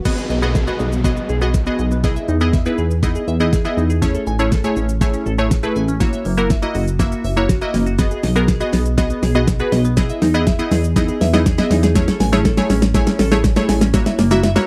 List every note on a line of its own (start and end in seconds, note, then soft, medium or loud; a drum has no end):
0.05 0.32 B3 medium
0.05 0.12 B3 loud
0.05 0.32 F#4 medium
0.05 0.32 G#4 medium
0.05 0.32 D#5 loud
0.05 kick loud
0.05 snare medium
0.05 crash loud
0.05 downlifter medium
0.05 shaker medium
0.18 0.25 G#4 medium
0.18 shaker soft
0.30 0.70 B1 medium
0.30 0.37 D#5 medium
0.30 shaker medium
0.42 0.60 B3 medium
0.42 0.49 B3 medium
0.42 0.60 F#4 medium
0.42 0.60 G#4 medium
0.42 0.60 D#5 medium
0.42 shaker medium
0.55 0.62 G#4 medium
0.55 kick loud
0.55 snare medium
0.55 shaker medium
0.67 0.94 B3 medium
0.67 0.94 F#4 medium
0.67 0.94 G#4 medium
0.67 0.74 D#5 medium
0.67 0.94 D#5 medium
0.67 shaker medium
0.80 1.19 B1 medium
0.80 0.86 B3 medium
0.80 shaker medium
0.92 shaker medium
1.04 1.31 B3 medium
1.04 1.31 F#4 medium
1.04 1.31 G#4 medium
1.04 1.11 D#5 medium
1.04 1.31 D#5 loud
1.04 kick loud
1.04 snare medium
1.04 shaker medium
1.17 1.24 B3 medium
1.17 shaker medium
1.29 1.69 B1 medium
1.29 1.36 G#4 medium
1.29 shaker medium
1.41 1.59 B3 medium
1.41 1.59 F#4 medium
1.41 1.59 G#4 medium
1.41 1.59 D#5 medium
1.41 shaker medium
1.54 kick loud
1.54 snare medium
1.54 shaker medium
1.66 1.93 B3 medium
1.66 1.93 F#4 medium
1.66 1.73 G#4 medium
1.66 1.93 G#4 medium
1.66 1.93 D#5 medium
1.66 shaker soft
1.79 2.19 B1 loud
1.79 1.86 D#5 medium
1.79 shaker medium
1.91 1.98 B3 medium
1.91 shaker medium
2.04 2.30 B3 medium
2.04 2.30 E4 medium
2.04 2.11 G#4 loud
2.04 2.30 G#4 medium
2.04 2.30 D#5 loud
2.04 kick loud
2.04 snare medium
2.04 shaker medium
2.16 2.23 E5 medium
2.16 shaker soft
2.28 2.68 E2 medium
2.28 2.35 D#4 medium
2.28 shaker medium
2.41 2.58 B3 medium
2.41 2.59 E4 medium
2.41 2.48 G#4 medium
2.41 2.59 G#4 medium
2.41 2.59 D#5 medium
2.41 shaker medium
2.53 2.60 E5 medium
2.53 kick loud
2.53 snare medium
2.53 shaker medium
2.66 2.92 B3 medium
2.66 2.72 D#4 medium
2.66 2.92 E4 medium
2.66 2.92 G#4 medium
2.66 2.92 B4 medium
2.66 shaker medium
2.78 3.18 E2 medium
2.78 2.85 G#4 medium
2.78 shaker medium
2.91 shaker medium
3.03 3.29 B3 medium
3.03 3.10 D#4 medium
3.03 3.29 E4 medium
3.03 3.29 G#4 medium
3.03 3.29 D#5 medium
3.03 kick loud
3.03 snare medium
3.03 shaker medium
3.15 3.22 G#4 medium
3.15 shaker medium
3.28 3.67 E2 medium
3.28 3.35 E5 medium
3.28 shaker medium
3.40 3.58 B3 medium
3.40 3.47 D#4 medium
3.40 3.58 E4 medium
3.40 3.58 G#4 medium
3.40 3.58 D#5 medium
3.40 shaker medium
3.53 3.59 G#4 medium
3.53 kick loud
3.53 snare medium
3.53 shaker medium
3.65 3.91 B3 medium
3.65 3.91 E4 medium
3.65 3.91 G#4 medium
3.65 3.91 D#5 medium
3.65 3.72 E5 medium
3.65 shaker soft
3.77 4.17 E2 loud
3.77 3.84 D#4 medium
3.77 shaker medium
3.90 3.96 G#4 medium
3.90 shaker medium
4.02 4.28 A3 medium
4.02 4.09 C#4 medium
4.02 4.28 E4 medium
4.02 4.28 G#4 medium
4.02 4.28 C#5 medium
4.02 kick loud
4.02 snare medium
4.02 closed hi-hat medium
4.02 shaker medium
4.15 4.21 A4 medium
4.15 closed hi-hat soft
4.15 shaker medium
4.27 4.67 A1 medium
4.27 4.34 G#5 medium
4.27 shaker medium
4.39 4.57 A3 medium
4.39 4.46 C#4 medium
4.39 4.57 E4 medium
4.39 4.57 G#4 medium
4.39 4.57 C#5 medium
4.39 closed hi-hat medium
4.39 shaker medium
4.52 4.59 A4 medium
4.52 kick loud
4.52 snare medium
4.52 closed hi-hat medium
4.52 shaker medium
4.64 4.90 A3 medium
4.64 4.90 E4 medium
4.64 4.91 G#4 medium
4.64 4.91 C#5 medium
4.64 4.71 G#5 medium
4.64 closed hi-hat medium
4.64 shaker medium
4.76 5.16 A1 medium
4.76 4.83 C#4 medium
4.76 shaker medium
4.89 closed hi-hat medium
4.89 shaker medium
5.01 5.28 A3 medium
5.01 5.28 E4 medium
5.01 5.28 G#4 medium
5.01 5.28 C#5 medium
5.01 5.08 G#5 loud
5.01 kick loud
5.01 snare medium
5.01 closed hi-hat medium
5.01 shaker medium
5.14 5.20 C#4 medium
5.14 closed hi-hat medium
5.14 shaker medium
5.26 5.66 A1 medium
5.26 5.33 A4 medium
5.26 shaker medium
5.38 5.56 A3 medium
5.38 5.56 E4 medium
5.38 5.56 G#4 medium
5.38 5.56 C#5 loud
5.38 closed hi-hat soft
5.38 shaker medium
5.51 kick loud
5.51 snare medium
5.51 closed hi-hat medium
5.51 shaker medium
5.63 5.89 A3 medium
5.63 5.90 E4 medium
5.63 5.90 G#4 medium
5.63 5.70 A4 medium
5.63 5.90 B4 loud
5.63 closed hi-hat soft
5.63 shaker soft
5.76 6.15 A1 loud
5.76 5.82 G#5 medium
5.76 shaker medium
5.88 5.95 C#4 medium
5.88 closed hi-hat medium
5.88 shaker medium
6.00 6.27 A#3 medium
6.00 6.27 E4 medium
6.00 6.27 F#4 medium
6.00 6.07 F#4 loud
6.00 6.27 C#5 loud
6.00 kick loud
6.00 snare medium
6.00 closed hi-hat medium
6.00 shaker medium
6.13 6.20 E5 medium
6.13 closed hi-hat medium
6.13 shaker soft
6.25 6.65 F#1 medium
6.25 6.32 A#3 medium
6.25 open hi-hat medium
6.25 shaker medium
6.37 6.55 A#3 medium
6.37 6.55 E4 medium
6.37 6.44 F#4 medium
6.37 6.55 F#4 medium
6.37 6.55 A#4 loud
6.37 closed hi-hat medium
6.37 shaker medium
6.50 6.57 E5 medium
6.50 kick loud
6.50 snare medium
6.50 closed hi-hat medium
6.50 shaker medium
6.62 6.89 A#3 medium
6.62 6.69 A#3 medium
6.62 6.89 E4 medium
6.62 6.89 F#4 medium
6.62 6.89 D#5 loud
6.62 closed hi-hat medium
6.62 shaker medium
6.75 7.14 F#1 medium
6.75 6.82 F#4 medium
6.75 open hi-hat medium
6.75 shaker medium
6.88 closed hi-hat medium
6.88 shaker medium
6.99 7.26 A#3 medium
6.99 7.06 A#3 medium
6.99 7.26 E4 medium
6.99 7.26 F#4 medium
6.99 7.26 E5 medium
6.99 kick loud
6.99 snare medium
6.99 closed hi-hat medium
6.99 shaker medium
7.12 7.19 F#4 medium
7.12 closed hi-hat medium
7.12 shaker medium
7.24 7.64 F#1 medium
7.24 7.31 E5 medium
7.24 open hi-hat medium
7.24 shaker medium
7.37 7.54 A#3 medium
7.37 7.43 A#3 medium
7.37 7.54 E4 medium
7.37 7.54 F#4 medium
7.37 7.54 C#5 loud
7.37 closed hi-hat soft
7.37 shaker medium
7.49 7.56 F#4 medium
7.49 kick loud
7.49 snare medium
7.49 closed hi-hat medium
7.49 shaker medium
7.61 7.88 A#3 medium
7.61 7.88 E4 medium
7.61 7.88 F#4 medium
7.61 7.88 D#5 loud
7.61 7.68 E5 medium
7.61 closed hi-hat soft
7.61 shaker soft
7.74 8.14 F#1 loud
7.74 7.81 A#3 medium
7.74 snare medium
7.74 open hi-hat medium
7.74 shaker medium
7.86 7.93 F#4 medium
7.86 closed hi-hat medium
7.86 shaker medium
7.99 8.25 B3 medium
7.99 8.05 B3 medium
7.99 8.25 F#4 medium
7.99 8.25 G#4 medium
7.99 8.25 D#5 medium
7.99 kick loud
7.99 snare medium
7.99 closed hi-hat medium
7.99 shaker medium
8.11 8.18 G#4 medium
8.11 closed hi-hat soft
8.11 shaker soft
8.23 8.63 B1 medium
8.23 8.30 D#5 medium
8.23 snare medium
8.23 open hi-hat medium
8.23 shaker medium
8.36 8.53 B3 medium
8.36 8.42 B3 medium
8.36 8.53 F#4 medium
8.36 8.54 G#4 medium
8.36 8.54 A#4 loud
8.36 closed hi-hat medium
8.36 shaker medium
8.48 8.55 G#4 medium
8.48 kick loud
8.48 snare medium
8.48 closed hi-hat medium
8.48 shaker medium
8.60 8.87 B3 medium
8.60 8.87 F#4 medium
8.60 8.87 G#4 medium
8.60 8.67 D#5 medium
8.60 8.87 D#5 medium
8.60 closed hi-hat medium
8.60 shaker medium
8.73 9.13 B1 medium
8.73 8.80 B3 medium
8.73 snare medium
8.73 open hi-hat medium
8.73 shaker medium
8.86 closed hi-hat medium
8.86 shaker medium
8.98 9.24 B3 medium
8.98 9.24 F#4 medium
8.98 9.24 G#4 medium
8.98 9.04 D#5 loud
8.98 9.24 D#5 loud
8.98 kick loud
8.98 snare medium
8.98 closed hi-hat medium
8.98 shaker medium
9.10 9.17 B3 medium
9.10 closed hi-hat medium
9.10 shaker medium
9.23 9.62 B1 medium
9.23 9.29 G#4 medium
9.23 snare medium
9.23 open hi-hat medium
9.23 shaker medium
9.35 9.53 B3 medium
9.35 9.53 F#4 medium
9.35 9.53 G#4 medium
9.35 9.53 D#5 loud
9.35 closed hi-hat soft
9.35 shaker medium
9.47 kick loud
9.47 snare medium
9.47 closed hi-hat medium
9.47 shaker medium
9.59 9.86 B3 medium
9.59 9.86 F#4 medium
9.59 9.67 G#4 medium
9.59 9.86 G#4 medium
9.59 9.86 B4 medium
9.59 closed hi-hat soft
9.59 shaker soft
9.72 10.12 B1 loud
9.72 9.79 D#5 medium
9.72 snare medium
9.72 open hi-hat medium
9.72 shaker medium
9.85 9.91 B3 medium
9.85 closed hi-hat medium
9.85 shaker medium
9.97 10.23 B3 medium
9.97 10.23 E4 medium
9.97 10.23 G#4 medium
9.97 10.04 G#4 loud
9.97 10.24 D#5 loud
9.97 kick loud
9.97 snare loud
9.97 closed hi-hat medium
9.97 shaker medium
10.09 10.16 E5 medium
10.09 closed hi-hat soft
10.09 shaker medium
10.22 10.62 E2 loud
10.22 10.29 D#4 medium
10.22 snare medium
10.22 open hi-hat medium
10.22 shaker medium
10.34 10.52 B3 medium
10.34 10.52 E4 medium
10.34 10.41 G#4 medium
10.34 10.52 G#4 medium
10.34 10.52 D#5 loud
10.34 closed hi-hat medium
10.34 shaker medium
10.47 10.53 E5 medium
10.47 kick loud
10.47 snare loud
10.47 closed hi-hat medium
10.47 shaker medium
10.59 10.85 B3 medium
10.59 10.66 D#4 medium
10.59 10.85 E4 medium
10.59 10.86 G#4 medium
10.59 10.86 D#5 loud
10.59 closed hi-hat medium
10.59 shaker medium
10.71 11.11 E2 medium
10.71 10.78 G#4 medium
10.71 snare loud
10.71 open hi-hat medium
10.71 shaker medium
10.84 closed hi-hat medium
10.84 shaker medium
10.96 11.22 B3 medium
10.96 11.03 D#4 medium
10.96 11.23 E4 medium
10.96 11.23 G#4 medium
10.96 11.23 D#5 loud
10.96 kick loud
10.96 snare loud
10.96 closed hi-hat medium
10.96 shaker medium
11.08 11.15 G#4 medium
11.08 closed hi-hat medium
11.08 shaker medium
11.21 11.61 E2 medium
11.21 11.28 E5 medium
11.21 snare loud
11.21 open hi-hat medium
11.21 shaker medium
11.33 11.51 B3 medium
11.33 11.40 D#4 medium
11.33 11.51 E4 medium
11.33 11.51 G#4 medium
11.33 11.51 D#5 medium
11.33 snare loud
11.33 closed hi-hat soft
11.33 shaker medium
11.46 11.53 G#4 medium
11.46 kick loud
11.46 snare loud
11.46 closed hi-hat medium
11.46 shaker medium
11.58 11.85 B3 medium
11.58 11.85 E4 medium
11.58 11.85 G#4 medium
11.58 11.85 D#5 loud
11.58 11.65 E5 medium
11.58 snare loud
11.58 closed hi-hat soft
11.58 shaker soft
11.71 12.10 E2 loud
11.71 11.77 D#4 medium
11.71 snare loud
11.71 open hi-hat medium
11.71 shaker medium
11.83 11.90 G#4 medium
11.83 snare loud
11.83 closed hi-hat medium
11.83 shaker medium
11.95 12.22 A3 medium
11.95 12.02 C#4 loud
11.95 12.22 E4 medium
11.95 12.22 G#4 medium
11.95 12.22 C#5 loud
11.95 kick loud
11.95 snare loud
11.95 closed hi-hat medium
11.95 shaker medium
12.08 12.14 A4 medium
12.08 snare loud
12.08 closed hi-hat medium
12.08 shaker medium
12.20 12.60 A1 loud
12.20 12.27 G#5 medium
12.20 snare loud
12.20 open hi-hat medium
12.20 shaker medium
12.32 12.50 A3 medium
12.32 12.39 C#4 medium
12.32 12.50 E4 medium
12.32 12.50 G#4 medium
12.32 12.50 C#5 loud
12.32 snare loud
12.32 closed hi-hat medium
12.32 shaker medium
12.45 12.52 A4 medium
12.45 kick loud
12.45 snare loud
12.45 closed hi-hat medium
12.45 shaker medium
12.57 12.84 A3 medium
12.57 12.84 E4 medium
12.57 12.84 G#4 medium
12.57 12.84 C#5 loud
12.57 12.64 G#5 medium
12.57 snare loud
12.57 closed hi-hat medium
12.57 shaker medium
12.70 13.09 A1 medium
12.70 12.77 C#4 medium
12.70 snare loud
12.70 open hi-hat medium
12.70 shaker medium
12.82 snare loud
12.82 closed hi-hat medium
12.82 shaker medium
12.94 13.21 A3 medium
12.94 13.21 E4 medium
12.94 13.21 G#4 medium
12.94 13.21 C#5 loud
12.94 13.01 G#5 loud
12.94 kick loud
12.94 snare loud
12.94 closed hi-hat medium
12.94 shaker medium
13.07 13.14 C#4 medium
13.07 snare loud
13.07 closed hi-hat medium
13.07 shaker medium
13.19 13.59 A1 medium
13.19 13.26 A4 medium
13.19 snare loud
13.19 open hi-hat medium
13.19 shaker medium
13.31 13.49 A3 medium
13.31 13.49 E4 medium
13.31 13.49 G#4 medium
13.31 13.50 C#5 medium
13.31 snare loud
13.31 closed hi-hat soft
13.31 shaker medium
13.44 kick loud
13.44 snare loud
13.44 closed hi-hat medium
13.44 shaker medium
13.56 13.83 A3 medium
13.56 13.83 E4 medium
13.56 13.83 G#4 medium
13.56 13.63 A4 medium
13.56 13.83 C#5 loud
13.56 snare loud
13.56 closed hi-hat soft
13.56 shaker soft
13.69 14.09 A1 loud
13.69 13.76 G#5 medium
13.69 snare loud
13.69 open hi-hat medium
13.69 shaker medium
13.81 13.88 C#4 medium
13.81 snare loud
13.81 closed hi-hat medium
13.81 shaker medium
13.94 14.20 A#3 medium
13.94 14.20 E4 medium
13.94 14.00 F#4 loud
13.94 14.20 F#4 medium
13.94 14.20 C#5 loud
13.94 kick loud
13.94 snare loud
13.94 closed hi-hat medium
13.94 shaker medium
14.06 14.13 E5 medium
14.06 snare loud
14.06 closed hi-hat medium
14.06 shaker medium
14.19 14.58 F#1 medium
14.19 14.25 A#3 medium
14.19 snare loud
14.19 open hi-hat medium
14.19 shaker medium
14.31 14.49 A#3 medium
14.31 14.49 E4 medium
14.31 14.38 F#4 medium
14.31 14.49 F#4 medium
14.31 14.49 E5 loud
14.31 snare loud
14.31 closed hi-hat medium
14.31 shaker medium
14.43 14.50 E5 medium
14.43 snare loud
14.43 closed hi-hat medium
14.43 shaker medium
14.56 14.67 A#3 medium
14.56 14.63 A#3 medium
14.56 14.67 E4 medium
14.56 14.67 F#4 medium
14.56 14.67 C#5 loud
14.56 snare loud
14.56 closed hi-hat medium
14.56 shaker medium